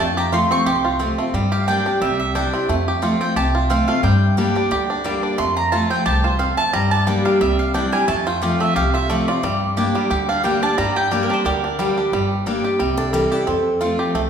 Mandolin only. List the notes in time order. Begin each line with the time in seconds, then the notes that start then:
0.00 A5
0.18 A#5
0.34 C6
0.52 C#6
0.67 C6
1.52 F5
1.68 G5
2.01 E5
2.20 E5
2.35 G5
3.21 G5
3.36 A5
3.70 F5
3.88 F5
4.03 G5
5.38 C6
5.57 A#5
5.72 A5
5.90 G5
6.06 A5
6.24 C5
6.39 F5
6.57 A5
6.74 A#5
6.91 A5
7.07 G5
7.25 F5
7.41 E5
7.59 F5
7.74 G5
7.92 G#5
8.08 A5
8.27 G5
8.43 F5
8.61 E5
8.76 F5
8.94 E5
9.10 D5
9.28 D5
10.29 F5
10.45 G5
10.63 A5
10.78 A#5
10.96 G5
11.12 D5
11.23 A#4
11.34 C5
11.45 A#4